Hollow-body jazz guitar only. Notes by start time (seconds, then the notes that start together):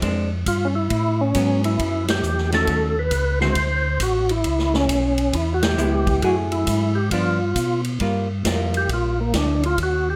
0.02 G#3 C4 D4
1.35 F#3 B3 C#4
2.52 D#3 A3 C#4 F#4
2.68 D#3 A3 C#4 F#4
3.40 D3 G#3 C4 F#4
5.78 G#3 B3 E4
6.23 F#3 A3 E4 G#4
7.12 F3 B3 D4
8.01 G3 A#3 F4
8.46 G3 A#3 F4